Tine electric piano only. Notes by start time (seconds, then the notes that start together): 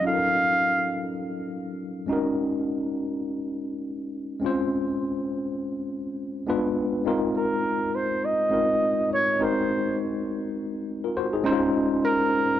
0.01 F#3 C#4 D#4
0.05 F4 A4
0.14 A#4
2.06 G#3 C#4 D#4
2.11 F#4 A#4
4.40 G#3 C4 C#4
4.45 F4 C5
6.47 G#3 B3 D4 F4 B4
7.05 G#3 C4 D#4 F4 A#4
8.50 G#3 C4 D#4 F4 A#4
9.39 G#3 C4 D#4 F#4 A#4
11.04 F4 A#4
11.17 F#4 C5
11.33 D#4 G#4
11.43 G#3 C#4 D#4 E4 C5
11.52 F4